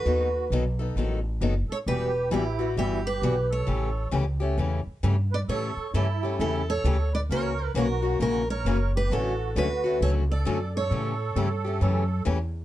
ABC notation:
X:1
M:4/4
L:1/8
Q:"Swing" 1/4=133
K:Amix
V:1 name="Steel-string acoustic guitar"
B2 z4 z c | B2 G2 G B2 c- | c2 z4 z d | c2 A2 A c2 d |
c2 ^A2 A c2 B | A2 B2 c d2 c- | c6 z2 |]
V:2 name="Accordion"
F2 z4 z A | G2 E2 E G2 A- | A2 z4 z B | A2 E2 E A2 B |
^A2 F2 F A2 G | F2 F2 A A2 A- | A6 z2 |]
V:3 name="Steel-string acoustic guitar"
[^D,F,B,^DA] z [D,F,B,DA] [B,DA] [D,F,B,DA] z [D,F,B,DA] z | [E,G,B,F] z [E,G,B,F] [G,B,F] [E,G,B,F] z [E,G,B,F] z | [C,E,A,CG] z [C,E,A,CG] [A,CG] [C,E,A,CG] z [C,E,A,CG] z | [C,E,A,CG] z [C,E,A,CG] [A,CG] [C,E,A,CG] z [C,E,A,CG] z |
[C,E,^A,CF] z [C,E,A,CF] [A,CF] [C,E,A,CF] z [C,E,A,CF] z | [D,F,A,CF] z [D,F,A,CF] [A,CF] [D,F,A,CF] z [D,F,A,CF] z | [C,E,A,CG] z [C,E,A,CG] [A,CG] [C,E,A,CG] z [C,E,A,CG] z |]
V:4 name="Upright bass" clef=bass
^D,,2 B,,,2 A,,,2 F,,, z | E,,,2 A,,,2 G,,,2 B,,,2 | A,,,2 C,,2 E,, z G,,2 | A,, z G,,2 E,,2 D,,2 |
C,,2 B,,,2 ^A,,,2 F,,,2 | A,,,2 D,,2 C,,2 F,,2 | A,,2 G,,2 F,,2 E,,2 |]